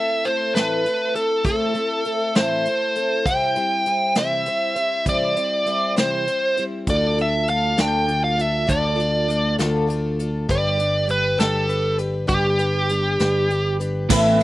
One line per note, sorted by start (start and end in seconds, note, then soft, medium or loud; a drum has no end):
0.00 0.24 A3 soft
0.00 0.24 C4 soft
0.00 0.25 E4 soft
0.00 0.25 A4 soft
0.00 0.27 E5 medium
0.25 0.55 A3 medium
0.25 0.54 C4 soft
0.25 0.54 E4 medium
0.25 0.53 A4 medium
0.25 0.53 C5 medium
0.25 closed hi-hat medium
0.55 0.86 A2 medium
0.55 0.85 E3 soft
0.55 0.83 A3 medium
0.55 0.85 C4 medium
0.55 0.85 E4 medium
0.55 0.85 A4 medium
0.55 1.15 B4 medium
0.55 snare loud
0.55 closed hi-hat medium
0.84 1.15 A3 medium
0.84 1.15 C4 medium
0.84 1.15 E4 medium
0.84 1.14 A4 medium
0.84 closed hi-hat soft
1.15 1.44 A3 soft
1.15 1.44 C4 soft
1.15 1.45 E4 soft
1.15 1.45 A4 soft
1.15 1.44 A4 medium
1.15 closed hi-hat medium
1.44 1.75 A2 medium
1.44 1.75 E3 medium
1.44 1.74 A3 medium
1.44 1.74 C4 medium
1.44 1.74 E4 medium
1.44 1.73 A4 medium
1.44 2.36 A4 medium
1.44 kick loud
1.44 closed hi-hat medium
1.74 2.04 A3 soft
1.74 2.05 C4 soft
1.74 2.05 E4 soft
1.74 2.05 A4 medium
1.74 closed hi-hat soft
2.05 2.36 A3 medium
2.05 2.36 C4 medium
2.05 2.36 E4 medium
2.05 2.36 A4 medium
2.05 closed hi-hat soft
2.35 2.67 A2 soft
2.35 2.67 E3 medium
2.35 2.66 A3 medium
2.35 2.66 C4 medium
2.35 2.67 E4 medium
2.35 2.66 A4 medium
2.35 3.29 C5 medium
2.35 snare loud
2.35 closed hi-hat medium
2.65 2.97 A3 medium
2.65 2.97 C4 medium
2.65 2.96 E4 medium
2.65 2.95 A4 medium
2.65 closed hi-hat soft
2.95 3.27 A3 soft
2.95 3.25 C4 soft
2.95 3.26 E4 soft
2.95 3.26 A4 soft
2.95 closed hi-hat medium
3.26 3.56 C3 medium
3.26 3.56 E3 medium
3.26 3.56 G3 medium
3.26 3.56 C4 medium
3.26 3.55 E4 medium
3.26 3.54 C5 medium
3.26 4.18 G5 medium
3.26 kick loud
3.26 closed hi-hat medium
3.55 3.85 G3 soft
3.55 3.85 C4 soft
3.55 3.86 E4 soft
3.55 3.86 C5 soft
3.55 closed hi-hat medium
3.86 4.16 G3 medium
3.86 4.15 C4 medium
3.86 4.15 E4 medium
3.86 4.15 C5 medium
3.86 closed hi-hat medium
4.15 4.47 C3 medium
4.15 4.47 E3 medium
4.15 4.45 G3 medium
4.15 4.45 C4 medium
4.15 4.46 E4 medium
4.15 4.47 C5 medium
4.15 5.04 E5 medium
4.15 snare medium
4.15 closed hi-hat medium
4.46 4.76 G3 soft
4.46 4.75 C4 soft
4.46 4.75 E4 medium
4.46 4.74 C5 medium
4.46 closed hi-hat medium
4.76 5.05 G3 soft
4.76 5.05 C4 soft
4.76 5.05 E4 soft
4.76 5.06 C5 soft
4.76 closed hi-hat medium
5.05 5.36 C3 medium
5.05 5.36 E3 medium
5.05 5.36 G3 medium
5.05 5.36 C4 medium
5.05 5.35 E4 medium
5.05 5.35 C5 medium
5.05 kick medium
5.05 closed hi-hat medium
5.09 5.94 D5 medium
5.36 5.65 G3 soft
5.36 5.66 C4 soft
5.36 5.66 E4 soft
5.36 5.67 C5 soft
5.36 closed hi-hat medium
5.66 5.96 G3 medium
5.66 5.97 C4 medium
5.66 5.96 E4 medium
5.66 5.95 C5 medium
5.66 closed hi-hat medium
5.96 6.28 C3 medium
5.96 6.28 E3 medium
5.96 6.25 G3 medium
5.96 6.26 C4 medium
5.96 6.26 E4 medium
5.96 6.27 C5 medium
5.96 6.62 C5 medium
5.96 snare loud
5.96 closed hi-hat medium
6.26 6.57 G3 soft
6.26 6.58 C4 medium
6.26 6.57 E4 medium
6.26 6.56 C5 medium
6.26 closed hi-hat medium
6.57 6.89 G3 soft
6.57 6.89 C4 soft
6.57 6.88 E4 soft
6.57 6.87 C5 soft
6.57 closed hi-hat soft
6.87 7.74 D2 medium
6.87 7.18 D3 medium
6.87 7.19 A3 medium
6.87 7.18 D4 medium
6.87 7.17 F4 medium
6.87 7.17 A4 medium
6.87 7.17 D5 medium
6.87 kick medium
6.87 closed hi-hat medium
7.18 7.48 D4 soft
7.18 7.48 F4 soft
7.18 7.48 A4 soft
7.18 7.49 E5 medium
7.18 closed hi-hat medium
7.48 7.77 A3 medium
7.48 7.77 D4 soft
7.48 7.77 F4 medium
7.48 7.76 A4 medium
7.48 7.80 F5 medium
7.48 closed hi-hat soft
7.77 8.65 D2 medium
7.77 8.09 D3 medium
7.77 8.05 A3 medium
7.77 8.07 D4 medium
7.77 8.07 F4 medium
7.77 8.08 A4 medium
7.77 8.24 G5 medium
7.77 snare loud
7.77 closed hi-hat medium
8.06 8.38 A3 medium
8.06 8.36 D4 medium
8.06 8.36 F4 medium
8.06 8.35 A4 medium
8.06 closed hi-hat medium
8.24 8.41 F5 medium
8.36 8.66 D4 soft
8.36 8.66 F4 soft
8.36 8.67 A4 soft
8.36 closed hi-hat medium
8.41 8.70 E5 medium
8.66 9.55 D2 medium
8.66 8.98 D3 medium
8.66 8.98 A3 medium
8.66 8.96 D4 medium
8.66 8.95 F4 medium
8.66 8.95 A4 medium
8.66 9.55 D5 medium
8.66 kick loud
8.66 closed hi-hat medium
8.96 9.27 D4 soft
8.96 9.28 F4 soft
8.96 9.27 A4 medium
8.96 closed hi-hat medium
9.28 9.58 A3 medium
9.28 9.57 D4 medium
9.28 9.57 F4 medium
9.28 9.57 A4 medium
9.28 closed hi-hat medium
9.59 10.46 D2 medium
9.59 9.90 D3 medium
9.59 9.86 A3 medium
9.59 9.87 D4 medium
9.59 9.88 F4 medium
9.59 9.89 A4 medium
9.59 snare medium
9.59 closed hi-hat medium
9.87 10.19 A3 medium
9.87 10.19 D4 medium
9.87 10.19 F4 medium
9.87 10.18 A4 medium
9.87 closed hi-hat medium
10.19 10.48 D4 soft
10.19 10.49 F4 soft
10.19 10.49 A4 medium
10.19 closed hi-hat medium
10.49 11.36 G1 medium
10.49 10.79 G3 medium
10.49 10.79 D4 medium
10.49 10.78 G4 medium
10.49 10.76 B4 medium
10.49 11.07 D5 medium
10.49 kick medium
10.49 closed hi-hat medium
10.78 11.06 D4 soft
10.78 11.06 G4 soft
10.78 11.07 B4 medium
10.78 closed hi-hat soft
11.07 11.38 G3 soft
11.07 11.38 D4 medium
11.07 11.37 G4 medium
11.07 11.36 B4 medium
11.07 closed hi-hat medium
11.11 11.40 B4 medium
11.38 12.26 G1 medium
11.38 11.66 G3 medium
11.38 11.66 D4 medium
11.38 11.68 G4 medium
11.38 11.96 A4 medium
11.38 11.68 B4 medium
11.38 snare loud
11.38 closed hi-hat medium
11.67 11.99 G3 medium
11.67 11.99 D4 medium
11.67 11.98 G4 medium
11.67 11.97 B4 medium
11.67 closed hi-hat soft
11.98 12.26 D4 soft
11.98 12.26 G4 soft
11.98 12.27 B4 medium
11.98 closed hi-hat medium
12.27 13.16 G1 medium
12.27 12.59 G3 medium
12.27 12.59 D4 medium
12.27 12.59 G4 medium
12.27 13.76 G4 medium
12.27 12.58 B4 medium
12.27 kick loud
12.27 closed hi-hat medium
12.59 12.90 D4 soft
12.59 12.90 G4 soft
12.59 12.90 B4 medium
12.59 closed hi-hat medium
12.89 13.20 G3 soft
12.89 13.21 D4 medium
12.89 13.20 G4 medium
12.89 13.20 B4 medium
12.89 closed hi-hat medium
13.19 14.07 G1 medium
13.19 13.49 G3 medium
13.19 13.50 D4 medium
13.19 13.51 G4 medium
13.19 13.51 B4 medium
13.19 snare medium
13.19 closed hi-hat medium
13.50 13.81 G3 medium
13.50 13.80 D4 medium
13.50 13.80 G4 medium
13.50 13.79 B4 medium
13.50 closed hi-hat medium
13.80 14.11 D4 soft
13.80 14.11 G4 soft
13.80 14.11 B4 medium
13.80 closed hi-hat medium
14.10 14.43 A1 loud
14.10 14.43 A2 medium
14.10 14.43 E3 medium
14.10 14.43 A3 medium
14.10 14.43 B3 medium
14.10 14.43 C4 loud
14.10 14.43 E4 medium
14.10 14.43 E4 loud
14.10 14.43 A4 medium
14.10 14.43 B4 medium
14.10 14.43 B4 loud
14.10 kick loud
14.10 crash loud
14.10 tambourine medium
14.40 ride medium